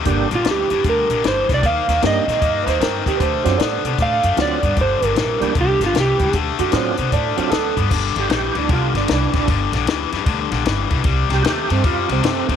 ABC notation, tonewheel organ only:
X:1
M:4/4
L:1/8
Q:"Swing" 1/4=153
K:Dphr
V:1 name="Tonewheel organ"
[G,B,DG] z6 z | z2 [G,B,DE] z4 z | z [^F,CD^E] z4 [F,CDE] z | z3 [G,B,DG] z4 |
z2 [^F,CD^E] z2 [F,CDE] z2 | z G [^FG] D =F D D [^CD] | z8 | z G [^FG] C =F C C [=B,C] |]